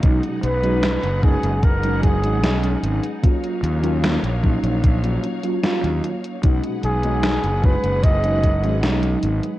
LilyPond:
<<
  \new Staff \with { instrumentName = "Flugelhorn" } { \time 4/4 \key ces \lydian \tempo 4 = 75 r8 b'4 gis'8 bes'8 gis'4 r8 | r1 | r8 gis'4 b'8 dis''4 r4 | }
  \new Staff \with { instrumentName = "String section" } { \time 4/4 \key ces \lydian << { <b gis' fis''>1 | <ges des'' f''>1 | <gis' b' fis''>1 | } \\ { dis'1~ | dis'1~ | dis'1 | } >> }
  \new Staff \with { instrumentName = "FM electric piano" } { \time 4/4 \key ces \lydian <fis gis des' dis'>8. <fis gis des' dis'>8 r16 <fis gis des' dis'>8. <fis gis des' dis'>8 <fis gis des' dis'>16 <fis gis des' dis'>4 | <ges bes des' f'>8. <ges bes des' f'>8 r16 <ges bes des' ees'>8. <ges bes des' f'>8 <ges bes des' f'>16 <ges bes des' f'>4 | <fis gis des' dis'>8. <fis gis des' dis'>8 r16 <fis gis des' dis'>8. <fis gis des' dis'>8 <fis gis des' dis'>16 <fis gis des' dis'>4 | }
  \new Staff \with { instrumentName = "Fingered electric bass" } { \clef bass \time 4/4 \key ces \lydian b,,16 r16 b,,8. fis,,8 fis,,4 gis,,16 b,,8 gis,,16 r16 | r8 ees,8. bes,,8 bes,,8. r8. ees,16 r8 | b,,16 r16 b,,8. fis,,8 fis,,4 gis,,16 b,,8 gis,,16 r16 | }
  \new DrumStaff \with { instrumentName = "Drums" } \drummode { \time 4/4 <hh bd>16 hh16 hh16 hh16 <hh sn>16 hh16 bd16 hh16 <hh bd>16 hh16 <hh bd>16 hh16 <hh sn>16 hh16 hh16 hh16 | <hh bd>16 hh16 hh16 hh16 <hh sn>16 hh16 bd16 hh16 <hh bd>16 hh16 hh16 hh16 <hh sn>16 hh16 hh16 hh16 | <hh bd>16 hh16 hh16 hh16 <hh sn>16 hh16 bd16 hh16 <hh bd>16 hh16 <hh bd>16 hh16 <hh sn>16 hh16 hh16 hh16 | }
>>